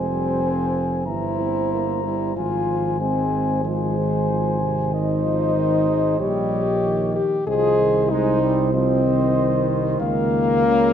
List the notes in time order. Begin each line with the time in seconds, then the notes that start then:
Already playing: F1 C4 C5 G#5
0.10 G3
0.43 F3
1.06 G1 E3 E4 C5 A#5
1.40 C4
1.72 A#3
2.04 G3 E4
2.36 G#1 F3 F4 C5 G#5
3.00 G#3 C4 C5 G#5
3.64 F3 G#3 C5 G#5
3.98 D#3
4.30 F3
4.61 C3
4.92 D#3 D#4 C5 D#5
5.24 F3
5.56 D#3
5.88 G#3
6.20 A#1 G3 G4 C#5 D#5
6.84 D#3
7.16 G4
7.47 C2 F3 G#4 C5 D#5
7.80 D#3
8.10 G#3 D#4 C5 D#5
8.42 G3
8.73 F3 C4 C5 D#5
9.05 D#3
10.00 C#2 A#3 A#4 F5
10.64 C#3